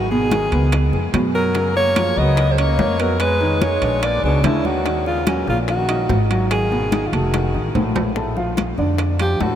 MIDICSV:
0, 0, Header, 1, 6, 480
1, 0, Start_track
1, 0, Key_signature, 6, "major"
1, 0, Tempo, 413223
1, 1803, Time_signature, 4, 2, 24, 8
1, 11097, End_track
2, 0, Start_track
2, 0, Title_t, "Alto saxophone"
2, 0, Program_c, 0, 65
2, 0, Note_on_c, 0, 66, 89
2, 124, Note_off_c, 0, 66, 0
2, 131, Note_on_c, 0, 68, 95
2, 1040, Note_off_c, 0, 68, 0
2, 1570, Note_on_c, 0, 70, 90
2, 2012, Note_off_c, 0, 70, 0
2, 2050, Note_on_c, 0, 73, 108
2, 2532, Note_on_c, 0, 75, 105
2, 2549, Note_off_c, 0, 73, 0
2, 2920, Note_on_c, 0, 72, 69
2, 2937, Note_off_c, 0, 75, 0
2, 3007, Note_on_c, 0, 73, 105
2, 3025, Note_off_c, 0, 72, 0
2, 3485, Note_on_c, 0, 70, 88
2, 3502, Note_off_c, 0, 73, 0
2, 3717, Note_off_c, 0, 70, 0
2, 3724, Note_on_c, 0, 71, 98
2, 4207, Note_on_c, 0, 73, 92
2, 4225, Note_off_c, 0, 71, 0
2, 4691, Note_on_c, 0, 74, 106
2, 4709, Note_off_c, 0, 73, 0
2, 4926, Note_off_c, 0, 74, 0
2, 4936, Note_on_c, 0, 62, 86
2, 5170, Note_on_c, 0, 64, 82
2, 5187, Note_off_c, 0, 62, 0
2, 5417, Note_on_c, 0, 66, 83
2, 5435, Note_off_c, 0, 64, 0
2, 5884, Note_off_c, 0, 66, 0
2, 5891, Note_on_c, 0, 65, 92
2, 6110, Note_off_c, 0, 65, 0
2, 6136, Note_on_c, 0, 61, 75
2, 6352, Note_off_c, 0, 61, 0
2, 6380, Note_on_c, 0, 65, 86
2, 6484, Note_off_c, 0, 65, 0
2, 6623, Note_on_c, 0, 66, 92
2, 7215, Note_off_c, 0, 66, 0
2, 7572, Note_on_c, 0, 68, 88
2, 8209, Note_on_c, 0, 65, 54
2, 8226, Note_off_c, 0, 68, 0
2, 8296, Note_on_c, 0, 66, 79
2, 8313, Note_off_c, 0, 65, 0
2, 9251, Note_off_c, 0, 66, 0
2, 10705, Note_on_c, 0, 67, 93
2, 10948, Note_on_c, 0, 66, 83
2, 10966, Note_off_c, 0, 67, 0
2, 11097, Note_off_c, 0, 66, 0
2, 11097, End_track
3, 0, Start_track
3, 0, Title_t, "Grand piano"
3, 0, Program_c, 1, 0
3, 127, Note_on_c, 1, 47, 77
3, 129, Note_on_c, 1, 59, 84
3, 323, Note_off_c, 1, 47, 0
3, 324, Note_off_c, 1, 59, 0
3, 369, Note_on_c, 1, 51, 67
3, 369, Note_on_c, 1, 63, 67
3, 564, Note_off_c, 1, 51, 0
3, 564, Note_off_c, 1, 63, 0
3, 604, Note_on_c, 1, 59, 70
3, 608, Note_on_c, 1, 71, 72
3, 997, Note_off_c, 1, 59, 0
3, 1000, Note_off_c, 1, 71, 0
3, 1083, Note_on_c, 1, 56, 64
3, 1084, Note_on_c, 1, 68, 68
3, 1280, Note_off_c, 1, 56, 0
3, 1281, Note_off_c, 1, 68, 0
3, 1328, Note_on_c, 1, 47, 80
3, 1329, Note_on_c, 1, 59, 72
3, 1719, Note_off_c, 1, 47, 0
3, 1720, Note_off_c, 1, 59, 0
3, 1798, Note_on_c, 1, 49, 74
3, 1803, Note_on_c, 1, 61, 76
3, 2193, Note_off_c, 1, 49, 0
3, 2196, Note_off_c, 1, 61, 0
3, 2284, Note_on_c, 1, 53, 73
3, 2287, Note_on_c, 1, 65, 70
3, 2480, Note_off_c, 1, 53, 0
3, 2481, Note_off_c, 1, 65, 0
3, 2525, Note_on_c, 1, 54, 76
3, 2532, Note_on_c, 1, 66, 68
3, 2917, Note_off_c, 1, 54, 0
3, 2921, Note_off_c, 1, 66, 0
3, 3003, Note_on_c, 1, 61, 74
3, 3009, Note_on_c, 1, 73, 66
3, 3396, Note_off_c, 1, 61, 0
3, 3399, Note_off_c, 1, 73, 0
3, 3484, Note_on_c, 1, 59, 70
3, 3486, Note_on_c, 1, 71, 73
3, 3876, Note_off_c, 1, 59, 0
3, 3877, Note_off_c, 1, 71, 0
3, 3959, Note_on_c, 1, 51, 83
3, 3963, Note_on_c, 1, 63, 83
3, 4156, Note_off_c, 1, 51, 0
3, 4159, Note_off_c, 1, 63, 0
3, 4202, Note_on_c, 1, 56, 68
3, 4205, Note_on_c, 1, 68, 62
3, 4398, Note_off_c, 1, 56, 0
3, 4400, Note_off_c, 1, 68, 0
3, 4443, Note_on_c, 1, 62, 71
3, 4446, Note_on_c, 1, 74, 68
3, 4836, Note_off_c, 1, 62, 0
3, 4837, Note_off_c, 1, 74, 0
3, 4928, Note_on_c, 1, 56, 65
3, 4931, Note_on_c, 1, 68, 65
3, 5121, Note_off_c, 1, 56, 0
3, 5124, Note_off_c, 1, 68, 0
3, 5168, Note_on_c, 1, 50, 80
3, 5171, Note_on_c, 1, 62, 74
3, 5559, Note_off_c, 1, 50, 0
3, 5560, Note_off_c, 1, 62, 0
3, 5643, Note_on_c, 1, 51, 73
3, 5646, Note_on_c, 1, 63, 74
3, 6036, Note_off_c, 1, 51, 0
3, 6038, Note_off_c, 1, 63, 0
3, 6119, Note_on_c, 1, 54, 70
3, 6122, Note_on_c, 1, 66, 69
3, 6317, Note_off_c, 1, 54, 0
3, 6319, Note_off_c, 1, 66, 0
3, 6359, Note_on_c, 1, 58, 71
3, 6363, Note_on_c, 1, 70, 72
3, 6754, Note_off_c, 1, 58, 0
3, 6756, Note_off_c, 1, 70, 0
3, 6839, Note_on_c, 1, 63, 68
3, 6841, Note_on_c, 1, 75, 68
3, 7234, Note_off_c, 1, 63, 0
3, 7235, Note_off_c, 1, 75, 0
3, 7327, Note_on_c, 1, 54, 81
3, 7329, Note_on_c, 1, 66, 77
3, 7719, Note_off_c, 1, 54, 0
3, 7721, Note_off_c, 1, 66, 0
3, 7800, Note_on_c, 1, 47, 76
3, 7809, Note_on_c, 1, 59, 80
3, 7999, Note_off_c, 1, 47, 0
3, 8003, Note_off_c, 1, 59, 0
3, 8038, Note_on_c, 1, 51, 63
3, 8044, Note_on_c, 1, 63, 70
3, 8237, Note_off_c, 1, 51, 0
3, 8241, Note_off_c, 1, 63, 0
3, 8285, Note_on_c, 1, 57, 71
3, 8288, Note_on_c, 1, 69, 69
3, 8679, Note_off_c, 1, 57, 0
3, 8681, Note_off_c, 1, 69, 0
3, 8758, Note_on_c, 1, 51, 69
3, 8761, Note_on_c, 1, 63, 71
3, 8958, Note_off_c, 1, 51, 0
3, 8960, Note_off_c, 1, 63, 0
3, 9004, Note_on_c, 1, 45, 73
3, 9007, Note_on_c, 1, 57, 81
3, 9399, Note_off_c, 1, 45, 0
3, 9401, Note_off_c, 1, 57, 0
3, 9481, Note_on_c, 1, 45, 68
3, 9486, Note_on_c, 1, 57, 71
3, 9486, Note_on_c, 1, 69, 76
3, 9680, Note_off_c, 1, 45, 0
3, 9683, Note_off_c, 1, 57, 0
3, 9683, Note_off_c, 1, 69, 0
3, 9719, Note_on_c, 1, 53, 68
3, 9722, Note_on_c, 1, 65, 67
3, 9727, Note_on_c, 1, 77, 70
3, 10116, Note_off_c, 1, 53, 0
3, 10118, Note_off_c, 1, 65, 0
3, 10121, Note_off_c, 1, 77, 0
3, 10203, Note_on_c, 1, 50, 68
3, 10205, Note_on_c, 1, 62, 74
3, 10210, Note_on_c, 1, 74, 68
3, 10599, Note_off_c, 1, 50, 0
3, 10600, Note_off_c, 1, 62, 0
3, 10603, Note_off_c, 1, 74, 0
3, 10685, Note_on_c, 1, 53, 70
3, 10687, Note_on_c, 1, 65, 69
3, 10690, Note_on_c, 1, 77, 69
3, 10884, Note_off_c, 1, 53, 0
3, 10885, Note_off_c, 1, 65, 0
3, 10887, Note_off_c, 1, 77, 0
3, 10924, Note_on_c, 1, 45, 81
3, 10925, Note_on_c, 1, 57, 78
3, 10931, Note_on_c, 1, 69, 76
3, 11097, Note_off_c, 1, 45, 0
3, 11097, Note_off_c, 1, 57, 0
3, 11097, Note_off_c, 1, 69, 0
3, 11097, End_track
4, 0, Start_track
4, 0, Title_t, "Trombone"
4, 0, Program_c, 2, 57
4, 115, Note_on_c, 2, 51, 72
4, 1032, Note_off_c, 2, 51, 0
4, 1557, Note_on_c, 2, 54, 76
4, 2005, Note_off_c, 2, 54, 0
4, 2042, Note_on_c, 2, 58, 80
4, 2521, Note_on_c, 2, 59, 88
4, 2538, Note_off_c, 2, 58, 0
4, 2920, Note_on_c, 2, 56, 55
4, 2937, Note_off_c, 2, 59, 0
4, 3001, Note_on_c, 2, 58, 98
4, 3018, Note_off_c, 2, 56, 0
4, 3478, Note_on_c, 2, 54, 83
4, 3495, Note_off_c, 2, 58, 0
4, 3710, Note_off_c, 2, 54, 0
4, 3717, Note_on_c, 2, 56, 86
4, 4208, Note_off_c, 2, 56, 0
4, 4208, Note_on_c, 2, 56, 75
4, 4689, Note_on_c, 2, 58, 76
4, 4706, Note_off_c, 2, 56, 0
4, 4921, Note_off_c, 2, 58, 0
4, 4928, Note_on_c, 2, 47, 82
4, 5164, Note_on_c, 2, 49, 77
4, 5181, Note_off_c, 2, 47, 0
4, 5406, Note_on_c, 2, 51, 74
4, 5424, Note_off_c, 2, 49, 0
4, 5884, Note_off_c, 2, 51, 0
4, 5890, Note_on_c, 2, 49, 71
4, 6109, Note_off_c, 2, 49, 0
4, 6123, Note_on_c, 2, 46, 66
4, 6346, Note_off_c, 2, 46, 0
4, 6356, Note_on_c, 2, 49, 69
4, 6466, Note_off_c, 2, 49, 0
4, 6604, Note_on_c, 2, 51, 67
4, 7205, Note_off_c, 2, 51, 0
4, 7566, Note_on_c, 2, 51, 72
4, 8216, Note_on_c, 2, 49, 48
4, 8234, Note_off_c, 2, 51, 0
4, 8300, Note_on_c, 2, 51, 68
4, 8318, Note_off_c, 2, 49, 0
4, 9254, Note_off_c, 2, 51, 0
4, 11097, End_track
5, 0, Start_track
5, 0, Title_t, "Upright bass"
5, 0, Program_c, 3, 32
5, 0, Note_on_c, 3, 32, 87
5, 532, Note_off_c, 3, 32, 0
5, 601, Note_on_c, 3, 37, 93
5, 1049, Note_off_c, 3, 37, 0
5, 1076, Note_on_c, 3, 41, 72
5, 1303, Note_off_c, 3, 41, 0
5, 1313, Note_on_c, 3, 42, 81
5, 2446, Note_off_c, 3, 42, 0
5, 2514, Note_on_c, 3, 37, 93
5, 3191, Note_off_c, 3, 37, 0
5, 3234, Note_on_c, 3, 41, 91
5, 4367, Note_off_c, 3, 41, 0
5, 4432, Note_on_c, 3, 34, 94
5, 4882, Note_off_c, 3, 34, 0
5, 4915, Note_on_c, 3, 37, 69
5, 5141, Note_off_c, 3, 37, 0
5, 5160, Note_on_c, 3, 39, 81
5, 6290, Note_off_c, 3, 39, 0
5, 6358, Note_on_c, 3, 34, 99
5, 7034, Note_off_c, 3, 34, 0
5, 7074, Note_on_c, 3, 32, 89
5, 8209, Note_off_c, 3, 32, 0
5, 8277, Note_on_c, 3, 29, 98
5, 8727, Note_off_c, 3, 29, 0
5, 8755, Note_on_c, 3, 33, 72
5, 8983, Note_off_c, 3, 33, 0
5, 8998, Note_on_c, 3, 34, 81
5, 10133, Note_off_c, 3, 34, 0
5, 10199, Note_on_c, 3, 41, 90
5, 10878, Note_off_c, 3, 41, 0
5, 10919, Note_on_c, 3, 40, 80
5, 11097, Note_off_c, 3, 40, 0
5, 11097, End_track
6, 0, Start_track
6, 0, Title_t, "Drums"
6, 126, Note_on_c, 9, 63, 31
6, 139, Note_on_c, 9, 60, 31
6, 242, Note_off_c, 9, 63, 0
6, 255, Note_off_c, 9, 60, 0
6, 365, Note_on_c, 9, 63, 97
6, 370, Note_on_c, 9, 65, 66
6, 370, Note_on_c, 9, 66, 57
6, 376, Note_on_c, 9, 60, 50
6, 481, Note_off_c, 9, 63, 0
6, 487, Note_off_c, 9, 65, 0
6, 487, Note_off_c, 9, 66, 0
6, 493, Note_off_c, 9, 60, 0
6, 605, Note_on_c, 9, 65, 61
6, 606, Note_on_c, 9, 63, 33
6, 721, Note_off_c, 9, 65, 0
6, 722, Note_off_c, 9, 63, 0
6, 841, Note_on_c, 9, 65, 82
6, 847, Note_on_c, 9, 63, 29
6, 848, Note_on_c, 9, 60, 72
6, 957, Note_off_c, 9, 65, 0
6, 963, Note_off_c, 9, 63, 0
6, 964, Note_off_c, 9, 60, 0
6, 1081, Note_on_c, 9, 60, 31
6, 1084, Note_on_c, 9, 63, 32
6, 1197, Note_off_c, 9, 60, 0
6, 1200, Note_off_c, 9, 63, 0
6, 1322, Note_on_c, 9, 63, 78
6, 1322, Note_on_c, 9, 65, 91
6, 1322, Note_on_c, 9, 66, 78
6, 1326, Note_on_c, 9, 60, 34
6, 1326, Note_on_c, 9, 61, 84
6, 1438, Note_off_c, 9, 63, 0
6, 1438, Note_off_c, 9, 65, 0
6, 1438, Note_off_c, 9, 66, 0
6, 1442, Note_off_c, 9, 60, 0
6, 1442, Note_off_c, 9, 61, 0
6, 1566, Note_on_c, 9, 60, 28
6, 1682, Note_off_c, 9, 60, 0
6, 1796, Note_on_c, 9, 65, 61
6, 1801, Note_on_c, 9, 63, 31
6, 1802, Note_on_c, 9, 60, 61
6, 1912, Note_off_c, 9, 65, 0
6, 1917, Note_off_c, 9, 63, 0
6, 1918, Note_off_c, 9, 60, 0
6, 2041, Note_on_c, 9, 60, 30
6, 2045, Note_on_c, 9, 63, 34
6, 2157, Note_off_c, 9, 60, 0
6, 2161, Note_off_c, 9, 63, 0
6, 2278, Note_on_c, 9, 60, 54
6, 2279, Note_on_c, 9, 63, 86
6, 2279, Note_on_c, 9, 65, 93
6, 2279, Note_on_c, 9, 66, 54
6, 2394, Note_off_c, 9, 60, 0
6, 2395, Note_off_c, 9, 63, 0
6, 2395, Note_off_c, 9, 65, 0
6, 2395, Note_off_c, 9, 66, 0
6, 2517, Note_on_c, 9, 63, 33
6, 2634, Note_off_c, 9, 63, 0
6, 2756, Note_on_c, 9, 60, 71
6, 2761, Note_on_c, 9, 63, 34
6, 2761, Note_on_c, 9, 65, 69
6, 2872, Note_off_c, 9, 60, 0
6, 2877, Note_off_c, 9, 63, 0
6, 2878, Note_off_c, 9, 65, 0
6, 2997, Note_on_c, 9, 60, 30
6, 2999, Note_on_c, 9, 63, 33
6, 3002, Note_on_c, 9, 65, 86
6, 3113, Note_off_c, 9, 60, 0
6, 3116, Note_off_c, 9, 63, 0
6, 3118, Note_off_c, 9, 65, 0
6, 3238, Note_on_c, 9, 63, 74
6, 3239, Note_on_c, 9, 66, 77
6, 3241, Note_on_c, 9, 60, 33
6, 3241, Note_on_c, 9, 61, 87
6, 3355, Note_off_c, 9, 63, 0
6, 3355, Note_off_c, 9, 66, 0
6, 3357, Note_off_c, 9, 60, 0
6, 3357, Note_off_c, 9, 61, 0
6, 3480, Note_on_c, 9, 65, 71
6, 3481, Note_on_c, 9, 60, 29
6, 3596, Note_off_c, 9, 65, 0
6, 3598, Note_off_c, 9, 60, 0
6, 3714, Note_on_c, 9, 60, 64
6, 3719, Note_on_c, 9, 65, 87
6, 3721, Note_on_c, 9, 63, 31
6, 3830, Note_off_c, 9, 60, 0
6, 3835, Note_off_c, 9, 65, 0
6, 3837, Note_off_c, 9, 63, 0
6, 3959, Note_on_c, 9, 60, 31
6, 3961, Note_on_c, 9, 63, 31
6, 4075, Note_off_c, 9, 60, 0
6, 4077, Note_off_c, 9, 63, 0
6, 4200, Note_on_c, 9, 63, 97
6, 4200, Note_on_c, 9, 65, 65
6, 4200, Note_on_c, 9, 66, 55
6, 4203, Note_on_c, 9, 60, 58
6, 4316, Note_off_c, 9, 63, 0
6, 4316, Note_off_c, 9, 65, 0
6, 4316, Note_off_c, 9, 66, 0
6, 4319, Note_off_c, 9, 60, 0
6, 4435, Note_on_c, 9, 65, 66
6, 4441, Note_on_c, 9, 63, 32
6, 4551, Note_off_c, 9, 65, 0
6, 4557, Note_off_c, 9, 63, 0
6, 4678, Note_on_c, 9, 65, 84
6, 4679, Note_on_c, 9, 60, 68
6, 4684, Note_on_c, 9, 63, 32
6, 4794, Note_off_c, 9, 65, 0
6, 4796, Note_off_c, 9, 60, 0
6, 4800, Note_off_c, 9, 63, 0
6, 4921, Note_on_c, 9, 60, 32
6, 4924, Note_on_c, 9, 63, 34
6, 5037, Note_off_c, 9, 60, 0
6, 5040, Note_off_c, 9, 63, 0
6, 5155, Note_on_c, 9, 60, 36
6, 5155, Note_on_c, 9, 61, 83
6, 5159, Note_on_c, 9, 63, 81
6, 5159, Note_on_c, 9, 65, 88
6, 5159, Note_on_c, 9, 66, 85
6, 5271, Note_off_c, 9, 60, 0
6, 5271, Note_off_c, 9, 61, 0
6, 5275, Note_off_c, 9, 65, 0
6, 5275, Note_off_c, 9, 66, 0
6, 5276, Note_off_c, 9, 63, 0
6, 5398, Note_on_c, 9, 60, 32
6, 5401, Note_on_c, 9, 63, 65
6, 5514, Note_off_c, 9, 60, 0
6, 5517, Note_off_c, 9, 63, 0
6, 5641, Note_on_c, 9, 60, 61
6, 5646, Note_on_c, 9, 65, 72
6, 5647, Note_on_c, 9, 63, 34
6, 5757, Note_off_c, 9, 60, 0
6, 5762, Note_off_c, 9, 65, 0
6, 5764, Note_off_c, 9, 63, 0
6, 5882, Note_on_c, 9, 60, 34
6, 5886, Note_on_c, 9, 63, 32
6, 5998, Note_off_c, 9, 60, 0
6, 6002, Note_off_c, 9, 63, 0
6, 6118, Note_on_c, 9, 60, 54
6, 6121, Note_on_c, 9, 65, 89
6, 6121, Note_on_c, 9, 66, 57
6, 6122, Note_on_c, 9, 63, 88
6, 6234, Note_off_c, 9, 60, 0
6, 6237, Note_off_c, 9, 65, 0
6, 6237, Note_off_c, 9, 66, 0
6, 6238, Note_off_c, 9, 63, 0
6, 6362, Note_on_c, 9, 63, 34
6, 6478, Note_off_c, 9, 63, 0
6, 6598, Note_on_c, 9, 60, 69
6, 6604, Note_on_c, 9, 65, 63
6, 6605, Note_on_c, 9, 63, 31
6, 6714, Note_off_c, 9, 60, 0
6, 6720, Note_off_c, 9, 65, 0
6, 6722, Note_off_c, 9, 63, 0
6, 6839, Note_on_c, 9, 65, 87
6, 6843, Note_on_c, 9, 60, 33
6, 6843, Note_on_c, 9, 63, 33
6, 6955, Note_off_c, 9, 65, 0
6, 6959, Note_off_c, 9, 60, 0
6, 6959, Note_off_c, 9, 63, 0
6, 7079, Note_on_c, 9, 66, 76
6, 7080, Note_on_c, 9, 63, 78
6, 7085, Note_on_c, 9, 60, 32
6, 7085, Note_on_c, 9, 61, 88
6, 7195, Note_off_c, 9, 66, 0
6, 7196, Note_off_c, 9, 63, 0
6, 7201, Note_off_c, 9, 60, 0
6, 7201, Note_off_c, 9, 61, 0
6, 7325, Note_on_c, 9, 60, 31
6, 7326, Note_on_c, 9, 65, 71
6, 7441, Note_off_c, 9, 60, 0
6, 7442, Note_off_c, 9, 65, 0
6, 7559, Note_on_c, 9, 63, 33
6, 7561, Note_on_c, 9, 60, 69
6, 7565, Note_on_c, 9, 65, 84
6, 7675, Note_off_c, 9, 63, 0
6, 7677, Note_off_c, 9, 60, 0
6, 7681, Note_off_c, 9, 65, 0
6, 7798, Note_on_c, 9, 63, 33
6, 7805, Note_on_c, 9, 60, 33
6, 7914, Note_off_c, 9, 63, 0
6, 7921, Note_off_c, 9, 60, 0
6, 8040, Note_on_c, 9, 63, 93
6, 8044, Note_on_c, 9, 65, 68
6, 8044, Note_on_c, 9, 66, 62
6, 8045, Note_on_c, 9, 60, 54
6, 8156, Note_off_c, 9, 63, 0
6, 8161, Note_off_c, 9, 65, 0
6, 8161, Note_off_c, 9, 66, 0
6, 8162, Note_off_c, 9, 60, 0
6, 8284, Note_on_c, 9, 65, 66
6, 8285, Note_on_c, 9, 63, 34
6, 8401, Note_off_c, 9, 63, 0
6, 8401, Note_off_c, 9, 65, 0
6, 8523, Note_on_c, 9, 63, 31
6, 8523, Note_on_c, 9, 65, 82
6, 8526, Note_on_c, 9, 60, 92
6, 8639, Note_off_c, 9, 63, 0
6, 8639, Note_off_c, 9, 65, 0
6, 8642, Note_off_c, 9, 60, 0
6, 8765, Note_on_c, 9, 63, 37
6, 8881, Note_off_c, 9, 63, 0
6, 9003, Note_on_c, 9, 63, 71
6, 9004, Note_on_c, 9, 65, 77
6, 9119, Note_off_c, 9, 63, 0
6, 9120, Note_off_c, 9, 65, 0
6, 9241, Note_on_c, 9, 61, 64
6, 9244, Note_on_c, 9, 66, 93
6, 9245, Note_on_c, 9, 63, 85
6, 9358, Note_off_c, 9, 61, 0
6, 9360, Note_off_c, 9, 66, 0
6, 9361, Note_off_c, 9, 63, 0
6, 9478, Note_on_c, 9, 60, 64
6, 9487, Note_on_c, 9, 63, 35
6, 9594, Note_off_c, 9, 60, 0
6, 9603, Note_off_c, 9, 63, 0
6, 9718, Note_on_c, 9, 60, 33
6, 9726, Note_on_c, 9, 63, 32
6, 9834, Note_off_c, 9, 60, 0
6, 9842, Note_off_c, 9, 63, 0
6, 9957, Note_on_c, 9, 60, 53
6, 9966, Note_on_c, 9, 65, 84
6, 9966, Note_on_c, 9, 66, 57
6, 9967, Note_on_c, 9, 63, 96
6, 10073, Note_off_c, 9, 60, 0
6, 10082, Note_off_c, 9, 65, 0
6, 10082, Note_off_c, 9, 66, 0
6, 10083, Note_off_c, 9, 63, 0
6, 10194, Note_on_c, 9, 60, 33
6, 10210, Note_on_c, 9, 63, 31
6, 10310, Note_off_c, 9, 60, 0
6, 10326, Note_off_c, 9, 63, 0
6, 10436, Note_on_c, 9, 60, 73
6, 10444, Note_on_c, 9, 65, 64
6, 10448, Note_on_c, 9, 63, 30
6, 10553, Note_off_c, 9, 60, 0
6, 10560, Note_off_c, 9, 65, 0
6, 10564, Note_off_c, 9, 63, 0
6, 10681, Note_on_c, 9, 65, 78
6, 10682, Note_on_c, 9, 63, 31
6, 10797, Note_off_c, 9, 65, 0
6, 10798, Note_off_c, 9, 63, 0
6, 10924, Note_on_c, 9, 60, 35
6, 10924, Note_on_c, 9, 61, 82
6, 10926, Note_on_c, 9, 63, 69
6, 10926, Note_on_c, 9, 66, 76
6, 11040, Note_off_c, 9, 60, 0
6, 11040, Note_off_c, 9, 61, 0
6, 11042, Note_off_c, 9, 63, 0
6, 11042, Note_off_c, 9, 66, 0
6, 11097, End_track
0, 0, End_of_file